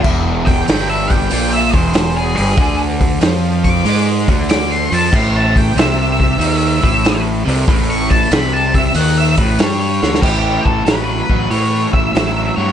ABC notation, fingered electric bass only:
X:1
M:4/4
L:1/8
Q:"Swing" 1/4=94
K:D
V:1 name="Fingered electric bass" clef=bass
E,,,2 G,,,2 _B,,, E,,,2 G,,, | D,,2 =F,,2 _A,, D,,2 F,, | A,,,2 =C,,2 ^D,, A,,,2 C,, | A,,,2 =C,,2 ^D,, A,,, G,, =D,, |
A,,, A,,, A,,, A,,, A,, A,,, A,,, G,, |]